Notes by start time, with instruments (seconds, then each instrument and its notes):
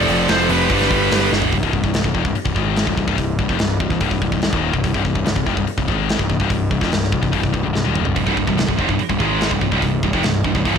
Already playing: distorted electric guitar F2 C3 F3, lead electric guitar A4 D5
0.08 picked electric bass F1, open hi-hat
0.28 picked electric bass F1, lead electric guitar A4 C5, snare, open hi-hat
0.49 picked electric bass F1, lead electric guitar G4 B4, open hi-hat
0.70 picked electric bass G1, distorted electric guitar G2 D3 G3, kick, open hi-hat
0.82 snare
0.91 picked electric bass G1, kick, open hi-hat
1.11 picked electric bass G1, snare, open hi-hat
1.32 picked electric bass G1, snare
1.42 floor tom
1.53 picked electric bass C1, distorted electric guitar C2 G2, kick, open hi-hat
1.63 picked electric bass C1, distorted electric guitar C2 G2, kick
1.73 picked electric bass C1, distorted electric guitar C2 G2, kick
1.83 picked electric bass C1, distorted electric guitar C2 G2, kick
1.94 picked electric bass C1, distorted electric guitar C2 G2, snare, open hi-hat
2.04 picked electric bass C1, distorted electric guitar C2 G2, kick
2.14 picked electric bass F1, distorted electric guitar F2 C3, kick
2.25 picked electric bass C1, distorted electric guitar C2 G2, kick
2.35 muted distorted electric guitar stroke, muted picked electric bass stroke, open hi-hat
2.45 picked electric bass C1, distorted electric guitar C2 G2, kick
2.55 picked electric bass G#1, distorted electric guitar G#2 D#3 G#3, kick
2.76 snare, open hi-hat
2.87 picked electric bass C1, distorted electric guitar C2 G2, kick
2.97 picked electric bass C1, distorted electric guitar C2 G2, kick
3.07 picked electric bass C1, distorted electric guitar C2 G2, kick
3.18 picked electric bass C1, distorted electric guitar C2 G2, kick, open hi-hat
3.39 picked electric bass C1, distorted electric guitar C2 G2, kick
3.49 picked electric bass F1, distorted electric guitar F2 C3, kick
3.59 picked electric bass C1, distorted electric guitar C2 G2, snare, open hi-hat
3.80 picked electric bass C1, distorted electric guitar C2 G2, kick
3.90 picked electric bass C1, distorted electric guitar C2 G2, kick
4.00 picked electric bass C1, distorted electric guitar C2 G2, kick, open hi-hat
4.11 picked electric bass C1, distorted electric guitar C2 G2, kick
4.22 picked electric bass C1, distorted electric guitar C2 G2, kick
4.32 picked electric bass C1, distorted electric guitar C2 G2, kick
4.42 picked electric bass C1, distorted electric guitar C2 G2, snare, open hi-hat
4.53 picked electric bass D#1, distorted electric guitar D#2 A#2 D#3, kick
4.73 picked electric bass C1, distorted electric guitar C2 G2, kick
4.84 picked electric bass C1, distorted electric guitar C2 G2, kick, open hi-hat
4.94 picked electric bass C1, distorted electric guitar C2 G2, kick
5.04 picked electric bass C1, distorted electric guitar C2 G2, kick
5.15 picked electric bass C1, distorted electric guitar C2 G2, kick
5.25 picked electric bass C1, distorted electric guitar C2 G2, snare, open hi-hat
5.35 picked electric bass C1, distorted electric guitar C2 G2, kick
5.46 picked electric bass F1, distorted electric guitar F2 C3, kick
5.56 picked electric bass C1, distorted electric guitar C2 G2, kick
5.67 muted distorted electric guitar stroke, muted picked electric bass stroke, open hi-hat
5.78 picked electric bass C1, distorted electric guitar C2 G2, kick
5.87 picked electric bass G#1, distorted electric guitar G#2 D#3 G#3, kick
6.09 snare, open hi-hat
6.19 picked electric bass C1, distorted electric guitar C2 G2, kick
6.29 picked electric bass C1, distorted electric guitar C2 G2, kick
6.40 picked electric bass C1, distorted electric guitar C2 G2, kick
6.50 picked electric bass C1, distorted electric guitar C2 G2, kick, open hi-hat
6.71 picked electric bass C1, distorted electric guitar C2 G2, kick
6.81 picked electric bass F1, distorted electric guitar F2 C3, kick, snare
6.91 picked electric bass C1, distorted electric guitar C2 G2, snare, open hi-hat
7.03 snare
7.12 picked electric bass C1, distorted electric guitar C2 G2, kick
7.21 picked electric bass C1, distorted electric guitar C2 G2, kick
7.32 picked electric bass C1, distorted electric guitar C2 G2, kick, open hi-hat
7.42 picked electric bass C1, distorted electric guitar C2 G2, kick
7.52 picked electric bass C1, distorted electric guitar C2 G2, kick
7.63 picked electric bass C1, distorted electric guitar C2 G2
7.73 picked electric bass C1, distorted electric guitar C2 G2, snare
7.84 picked electric bass D#1, distorted electric guitar D#2 A#2 D#3, high tom
7.96 mid tom
8.05 picked electric bass C1, distorted electric guitar C2 G2, floor tom
8.15 picked electric bass C1, distorted electric guitar C2 G2, kick, open hi-hat
8.26 picked electric bass C1, distorted electric guitar C2 G2, kick
8.36 picked electric bass C1, distorted electric guitar C2 G2, kick
8.47 picked electric bass C1, distorted electric guitar C2 G2, kick
8.57 picked electric bass C1, distorted electric guitar C2 G2, snare, open hi-hat
8.67 picked electric bass C1, distorted electric guitar C2 G2, kick
8.78 picked electric bass F1, distorted electric guitar F2 C3, kick
8.89 picked electric bass C1, distorted electric guitar C2 G2, kick
8.99 muted distorted electric guitar stroke, muted picked electric bass stroke, open hi-hat
9.09 picked electric bass C1, distorted electric guitar C2 G2, kick
9.19 picked electric bass G#1, distorted electric guitar G#2 D#3 G#3, kick
9.41 snare, open hi-hat
9.51 picked electric bass C1, distorted electric guitar C2 G2, kick
9.61 picked electric bass C1, distorted electric guitar C2 G2, kick
9.71 picked electric bass C1, distorted electric guitar C2 G2, kick
9.82 picked electric bass C1, distorted electric guitar C2 G2, kick, open hi-hat
10.03 picked electric bass C1, distorted electric guitar C2 G2, kick
10.13 picked electric bass F1, distorted electric guitar F2 C3, kick
10.23 picked electric bass C1, distorted electric guitar C2 G2, snare, open hi-hat
10.44 picked electric bass C1, distorted electric guitar C2 G2, kick
10.55 picked electric bass C1, distorted electric guitar C2 G2, kick
10.65 picked electric bass C1, distorted electric guitar C2 G2, kick, open hi-hat